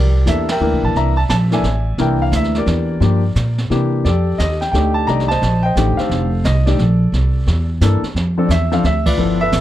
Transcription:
0.00 0.25 C2 medium
0.00 0.46 G4 medium
0.00 0.46 A#4 medium
0.00 0.25 D5 medium
0.26 0.60 E2 medium
0.26 0.46 E3 medium
0.26 0.46 A#3 medium
0.26 0.46 D4 medium
0.26 0.47 A4 medium
0.26 0.50 E5 medium
0.26 snare medium
0.26 hi-hat pedal medium
0.48 0.61 A#4 medium
0.48 0.94 E5 medium
0.48 0.82 G5 medium
0.48 snare medium
0.48 ride medium
0.60 0.73 D2 medium
0.60 1.13 E3 medium
0.60 1.13 A#3 medium
0.60 1.13 D4 medium
0.60 1.13 A#4 medium
0.72 0.82 C2 medium
0.83 0.94 A#1 medium
0.83 0.97 A5 medium
0.94 1.28 C2 medium
0.94 1.49 D5 medium
0.94 1.48 E5 medium
0.94 1.18 A#5 loud
0.94 brush sweep soft
0.94 snare soft
1.17 1.22 A5 loud
1.29 1.62 A#1 medium
1.29 1.35 A5 loud
1.29 snare medium
1.29 hi-hat pedal medium
1.51 1.63 E3 medium
1.51 1.63 A#3 medium
1.51 1.63 D4 medium
1.51 1.64 A4 medium
1.51 1.96 D5 medium
1.51 1.96 E5 medium
1.51 1.96 G#5 loud
1.51 snare soft
1.63 1.97 A1 medium
1.63 snare soft
1.98 2.31 C2 medium
1.98 2.94 E3 medium
1.98 2.94 A#3 medium
1.98 2.94 D4 medium
1.98 2.56 A#4 medium
1.98 2.34 E5 medium
1.98 2.22 G5 medium
1.98 brush sweep medium
1.98 snare soft
2.22 2.34 F5 medium
2.32 2.66 D2 medium
2.32 2.55 E5 medium
2.32 snare medium
2.32 hi-hat pedal medium
2.44 snare soft
2.55 3.01 G4 medium
2.55 3.55 A#4 medium
2.55 3.55 D5 medium
2.55 snare soft
2.66 3.00 E2 medium
2.66 snare soft
3.00 3.34 G2 medium
3.00 3.21 F3 medium
3.00 3.21 A#3 medium
3.00 3.21 D4 medium
3.00 3.21 G4 medium
3.00 brush sweep soft
3.00 snare soft
3.35 3.69 A#2 medium
3.35 snare medium
3.35 hi-hat pedal medium
3.58 snare soft
3.70 4.03 C3 medium
3.70 4.05 E3 medium
3.70 4.05 A#3 medium
3.70 4.05 D4 medium
3.70 4.05 G4 medium
3.70 snare soft
4.05 4.38 F2 medium
4.05 4.58 G4 medium
4.05 4.58 A4 medium
4.05 4.36 D5 medium
4.05 brush sweep medium
4.05 snare soft
4.38 4.72 D#2 medium
4.38 4.59 D#5 medium
4.38 snare medium
4.38 hi-hat pedal soft
4.61 4.70 G5 medium
4.61 snare soft
4.72 5.06 D2 medium
4.72 5.07 A3 medium
4.72 5.08 D4 medium
4.72 5.25 D#4 medium
4.72 5.08 G4 medium
4.72 4.93 G5 medium
4.72 snare soft
4.94 5.06 A5 medium
5.07 5.41 C2 medium
5.07 5.27 D#3 medium
5.07 5.27 A3 medium
5.07 5.28 D4 medium
5.07 5.28 G4 medium
5.07 5.61 D5 medium
5.07 5.30 D#5 medium
5.07 5.30 A#5 loud
5.07 brush sweep soft
5.07 snare soft
5.20 snare soft
5.28 5.64 C5 medium
5.28 5.64 D#5 medium
5.28 5.61 A5 loud
5.28 snare soft
5.42 5.75 A#1 medium
5.42 snare soft
5.63 5.99 C5 medium
5.63 6.08 D#5 medium
5.63 5.98 G5 loud
5.76 5.96 A1 medium
5.76 6.28 D3 medium
5.76 6.28 D#3 medium
5.76 6.28 A3 soft
5.76 6.28 G4 medium
5.76 snare medium
5.76 hi-hat pedal medium
5.97 6.43 A4 medium
5.97 6.42 C5 medium
5.97 6.46 F5 medium
5.97 muted upright bass stroke soft
5.97 snare soft
6.09 6.43 F1 medium
6.09 brush sweep soft
6.09 snare soft
6.44 6.78 C2 medium
6.44 6.67 D#5 medium
6.44 snare medium
6.44 hi-hat pedal medium
6.66 6.77 D#3 medium
6.66 6.78 A3 medium
6.66 6.78 D4 medium
6.66 6.78 G4 medium
6.66 7.66 A4 medium
6.66 7.65 D5 medium
6.66 snare soft
6.79 7.12 A#1 medium
6.79 snare soft
7.12 7.46 C2 medium
7.12 brush sweep soft
7.12 snare soft
7.47 7.80 E2 medium
7.47 snare soft
7.81 8.01 G2 medium
7.81 8.01 E3 medium
7.81 8.01 A#3 medium
7.81 8.01 D4 medium
7.81 8.01 A4 medium
7.81 snare medium
7.81 hi-hat pedal medium
8.02 muted upright bass stroke soft
8.02 snare soft
8.14 8.48 F2 medium
8.14 brush sweep soft
8.14 snare soft
8.38 8.49 F3 medium
8.38 8.49 C4 medium
8.38 8.49 D4 medium
8.38 8.49 A4 medium
8.47 8.82 E2 medium
8.47 8.50 D5 medium
8.47 8.72 E5 loud
8.47 snare medium
8.47 hi-hat pedal medium
8.72 8.83 F3 medium
8.72 8.83 C4 medium
8.72 8.83 D4 medium
8.72 8.83 A4 medium
8.72 8.84 F5 medium
8.72 snare soft
8.83 9.17 D2 medium
8.83 9.07 E5 loud
8.83 snare soft
9.06 9.50 F4 medium
9.06 9.40 B4 medium
9.06 9.41 D5 loud
9.06 kick medium
9.06 crash medium
9.17 9.51 G1 medium
9.17 9.37 F3 medium
9.17 9.38 B3 medium
9.17 9.38 E4 medium
9.17 9.38 A4 medium
9.17 brush sweep medium
9.41 9.61 A4 medium
9.41 9.61 B4 medium
9.41 9.61 E5 loud
9.52 9.61 A1 medium
9.52 snare medium
9.52 hi-hat pedal medium

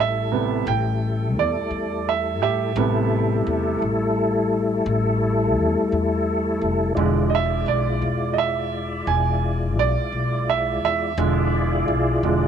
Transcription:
0.00 0.64 A1 medium
0.00 2.72 G3 medium
0.00 2.73 A3 medium
0.00 2.72 E4 medium
0.00 2.73 A4 medium
0.00 0.67 E5 medium
0.32 0.64 C3 soft
0.32 0.64 G3 soft
0.32 0.64 B3 soft
0.67 1.37 A1 loud
0.67 1.36 G5 medium
1.37 1.53 E2 medium
1.37 2.06 D5 medium
1.71 2.42 E2 medium
2.09 2.41 E5 medium
2.42 2.74 A2 medium
2.42 3.78 G4 medium
2.42 3.78 E5 medium
2.76 3.43 A1 loud
2.76 3.78 C3 soft
2.76 6.93 G3 medium
2.76 3.78 G3 soft
2.76 6.93 A3 medium
2.76 3.79 B3 soft
2.76 6.93 E4 medium
2.76 6.93 A4 medium
3.47 3.79 E2 medium
3.82 4.83 A1 medium
4.86 5.57 A1 loud
5.57 5.74 E2 medium
5.92 6.63 E2 medium
6.61 6.94 F1 medium
6.95 7.63 E1 loud
6.95 7.98 D3 soft
6.95 7.99 F3 soft
6.95 11.13 G#3 medium
6.95 7.99 G#3 soft
6.95 11.13 E4 medium
6.95 11.13 F4 medium
6.95 11.13 D5 medium
7.30 7.34 D#5 medium
7.35 7.68 E5 medium
7.66 7.99 B1 medium
7.66 8.36 D5 medium
8.02 9.03 E1 medium
8.34 8.38 D#5 medium
8.38 9.06 E5 medium
9.07 9.77 E1 loud
9.07 9.76 G#5 medium
9.77 9.93 B1 medium
9.77 10.47 D5 medium
10.12 10.82 B1 medium
10.50 10.83 E5 medium
10.82 11.15 E2 medium
10.82 12.20 E5 medium
11.18 11.84 E1 loud
11.18 12.19 D3 soft
11.18 12.20 F3 soft
11.18 12.20 G#3 medium
11.18 12.48 E4 medium
11.18 12.48 F4 medium
11.18 12.48 G#4 medium
11.18 12.48 D5 medium
11.88 12.20 B1 medium
12.23 12.48 E1 medium
12.23 12.48 D3 soft
12.23 12.48 F3 soft
12.23 12.48 G#3 soft

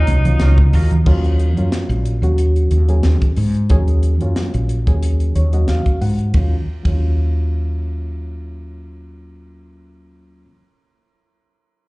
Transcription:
0.00 0.73 D#4 medium
0.07 0.37 C2 medium
0.07 0.16 C#4 soft
0.07 0.16 F#4 soft
0.07 muted clean electric guitar stroke soft
0.07 closed hi-hat medium
0.07 high conga medium
0.25 0.96 F#3 medium
0.25 0.96 A#3 medium
0.25 0.96 C#4 medium
0.25 0.96 F4 medium
0.25 closed hi-hat soft
0.25 low conga medium
0.40 0.70 C#2 medium
0.40 0.59 F#3 soft
0.40 0.58 C#4 medium
0.40 0.58 F4 medium
0.40 0.58 A#4 medium
0.40 snare medium
0.40 closed hi-hat medium
0.40 high conga soft
0.58 muted clean electric guitar stroke soft
0.58 kick medium
0.58 high conga medium
0.73 1.03 D#2 medium
0.73 0.91 F#3 medium
0.73 0.91 C#4 medium
0.73 0.92 F4 medium
0.73 0.91 A#4 medium
0.73 open hi-hat medium
0.73 low conga medium
0.91 muted clean electric guitar stroke soft
0.91 closed hi-hat soft
0.91 low conga medium
1.06 1.56 D#2 medium
1.06 1.50 F#3 loud
1.06 1.50 A#3 medium
1.06 1.50 C#4 medium
1.06 1.50 F4 loud
1.06 kick loud
1.06 crash medium
1.24 closed hi-hat soft
1.39 closed hi-hat medium
1.56 1.71 F#2 medium
1.56 2.13 F#3 medium
1.56 2.13 A#3 medium
1.56 2.14 C#4 medium
1.56 2.14 F4 medium
1.56 closed hi-hat soft
1.72 snare medium
1.72 closed hi-hat medium
1.89 2.21 A#1 medium
1.89 closed hi-hat soft
2.05 closed hi-hat medium
2.22 2.68 D#2 medium
2.22 2.79 F#3 medium
2.22 2.79 A#3 medium
2.22 2.79 C#4 medium
2.22 2.79 F#4 medium
2.22 closed hi-hat soft
2.38 closed hi-hat medium
2.56 closed hi-hat soft
2.71 3.02 D#2 medium
2.71 closed hi-hat medium
2.88 3.30 F#3 medium
2.88 3.31 A#3 medium
2.88 3.31 C#4 medium
2.88 3.31 G#4 medium
2.88 closed hi-hat soft
3.03 3.21 D#2 medium
3.03 snare medium
3.03 closed hi-hat medium
3.21 kick medium
3.21 closed hi-hat soft
3.36 3.68 G#2 medium
3.36 3.45 C#4 soft
3.36 3.46 G#4 soft
3.36 open hi-hat medium
3.55 closed hi-hat soft
3.70 4.21 D#2 medium
3.70 4.13 F#3 medium
3.70 4.13 A#3 medium
3.70 4.14 C#4 medium
3.70 4.14 G#4 loud
3.70 kick medium
3.70 closed hi-hat medium
3.88 closed hi-hat soft
4.03 closed hi-hat soft
4.21 4.35 F#2 medium
4.21 4.77 F#3 medium
4.21 4.77 A#3 medium
4.21 4.77 C#4 medium
4.21 4.78 F4 medium
4.21 closed hi-hat soft
4.36 snare medium
4.36 closed hi-hat medium
4.54 4.85 A#1 medium
4.54 closed hi-hat soft
4.69 closed hi-hat medium
4.86 5.32 D#2 medium
4.86 5.43 F#3 medium
4.86 5.43 A#3 medium
4.86 5.43 C#4 medium
4.86 5.44 G#4 medium
4.86 kick medium
4.86 closed hi-hat soft
5.03 closed hi-hat medium
5.20 closed hi-hat soft
5.35 5.66 D#2 medium
5.35 5.52 C#5 medium
5.35 closed hi-hat medium
5.53 5.95 F#3 medium
5.53 5.95 A#3 medium
5.53 5.95 C#4 medium
5.53 5.96 F#4 medium
5.53 5.67 D#5 soft
5.53 closed hi-hat soft
5.68 5.85 D#2 medium
5.68 5.99 F5 medium
5.68 snare medium
5.68 closed hi-hat medium
5.86 kick medium
5.86 closed hi-hat soft
6.01 6.32 G#2 medium
6.01 6.10 C#4 soft
6.01 6.10 F4 soft
6.01 6.32 F#5 soft
6.01 open hi-hat medium
6.19 closed hi-hat soft
6.32 6.54 D#2 medium
6.32 6.53 F#3 medium
6.32 6.54 A#3 medium
6.32 6.54 C#4 medium
6.32 kick medium
6.32 ride medium
6.37 6.55 F4 medium
6.83 10.45 D#2 medium
6.83 10.44 F#3 medium
6.83 10.45 A#3 medium
6.83 10.46 C#4 medium
6.83 kick soft
6.83 ride medium
6.88 10.46 F4 medium

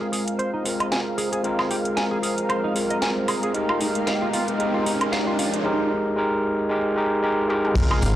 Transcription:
0.00 0.62 G#3 medium
0.00 3.51 G#3 medium
0.00 0.62 C4 medium
0.00 3.51 C4 medium
0.00 0.63 F4 medium
0.00 0.07 G#4 medium
0.00 0.63 A#4 medium
0.00 5.35 A#4 medium
0.00 3.51 F5 medium
0.00 riser medium
0.12 0.23 G#4 medium
0.12 open hi-hat loud
0.28 closed hi-hat medium
0.39 0.50 C5 medium
0.39 closed hi-hat soft
0.54 0.62 D#4 medium
0.64 1.41 G#3 medium
0.64 1.41 C4 medium
0.64 1.42 F4 medium
0.64 1.42 A#4 medium
0.64 open hi-hat loud
0.80 0.86 D#5 medium
0.80 closed hi-hat medium
0.80 high woodblock medium
0.92 0.99 G#5 medium
0.92 snare loud
0.92 closed hi-hat medium
1.18 1.29 G#4 medium
1.18 open hi-hat loud
1.32 1.41 G#4 medium
1.32 closed hi-hat medium
1.43 2.73 G#3 medium
1.43 2.73 C4 medium
1.43 2.73 F4 medium
1.43 2.73 A#4 medium
1.43 closed hi-hat soft
1.59 1.68 G#4 medium
1.59 snare soft
1.59 high woodblock medium
1.71 1.75 G4 medium
1.71 open hi-hat loud
1.85 closed hi-hat medium
1.97 2.04 G#5 medium
1.97 snare loud
1.97 closed hi-hat soft
2.11 2.17 G#4 medium
2.23 2.34 G#4 medium
2.23 open hi-hat loud
2.38 closed hi-hat medium
2.49 2.60 C5 medium
2.49 closed hi-hat medium
2.49 high woodblock medium
2.64 2.73 D#4 medium
2.74 3.51 G#3 medium
2.74 3.52 C4 medium
2.74 3.52 F4 medium
2.74 3.52 A#4 medium
2.74 open hi-hat loud
2.90 2.96 D#5 medium
2.90 closed hi-hat medium
3.02 3.09 G#5 medium
3.02 snare loud
3.02 closed hi-hat medium
3.28 3.39 G#4 medium
3.28 open hi-hat loud
3.28 high woodblock medium
3.43 3.52 G#4 medium
3.43 closed hi-hat medium
3.54 4.57 G#3 medium
3.54 5.37 G#3 medium
3.54 4.58 D#4 medium
3.54 5.37 D#4 medium
3.54 5.37 G4 medium
3.54 4.58 G4 medium
3.54 4.59 A#4 medium
3.54 5.63 F5 medium
3.54 closed hi-hat soft
3.69 3.78 F4 medium
3.69 high woodblock medium
3.81 3.86 D#4 medium
3.81 open hi-hat loud
3.95 closed hi-hat medium
4.07 4.15 F5 medium
4.07 snare loud
4.07 closed hi-hat soft
4.22 4.28 F4 medium
4.33 4.45 F4 medium
4.33 open hi-hat loud
4.48 closed hi-hat medium
4.59 5.63 G#3 medium
4.59 5.63 D#4 medium
4.59 5.64 G4 medium
4.59 5.64 A#4 loud
4.59 closed hi-hat soft
4.74 4.83 F4 medium
4.86 4.91 D#4 medium
4.86 open hi-hat loud
5.01 closed hi-hat medium
5.01 high woodblock medium
5.12 5.20 F5 medium
5.12 snare loud
5.12 closed hi-hat medium
5.27 5.33 F4 medium
5.39 5.65 F3 medium
5.39 5.65 C#4 medium
5.39 5.50 F4 medium
5.39 5.65 C5 medium
5.39 open hi-hat loud
5.54 closed hi-hat medium
5.64 6.15 G#3 medium
5.64 6.16 D#4 medium
5.64 6.16 G4 medium
5.64 6.16 A#4 loud
6.16 6.68 G#3 loud
6.16 6.68 D#4 medium
6.16 6.69 G4 medium
6.16 6.69 A#4 loud
6.69 6.94 G#3 loud
6.69 6.95 D#4 medium
6.69 6.95 G4 medium
6.69 6.95 A#4 loud
6.96 7.21 G#3 loud
6.96 7.21 D#4 medium
6.96 7.21 G4 medium
6.96 7.22 A#4 loud
7.22 7.47 G#3 loud
7.22 7.47 D#4 medium
7.22 7.48 G4 medium
7.22 7.48 A#4 loud
7.48 7.73 G#3 loud
7.48 7.74 D#4 medium
7.48 7.74 G4 medium
7.48 7.74 A#4 loud
7.48 high tom medium
7.65 mid tom medium
7.76 8.16 F4 medium
7.76 8.16 A#4 medium
7.76 8.16 F5 medium
7.76 8.16 C6 medium
7.76 kick loud
7.76 closed hi-hat medium
7.76 tambourine soft
7.76 crash loud
7.76 impact medium
7.76 shaker soft
7.91 7.99 G#4 medium
7.91 high woodblock medium
8.02 8.16 G#1 loud
8.02 8.07 G4 medium
8.02 open hi-hat loud
8.02 tambourine medium
8.02 shaker medium

